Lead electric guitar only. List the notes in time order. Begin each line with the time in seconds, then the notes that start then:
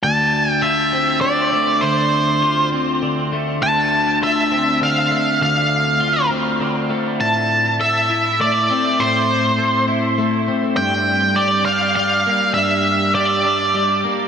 0.03 A5
0.51 G5
0.62 E5
1.21 D5
1.81 C5
3.63 A5
4.23 E5
4.83 F5
5.42 F5
7.21 A5
7.81 E5
8.41 D5
9.00 C5
10.77 G5
11.36 D5
11.65 F5
11.96 F5
12.54 E5
13.15 D5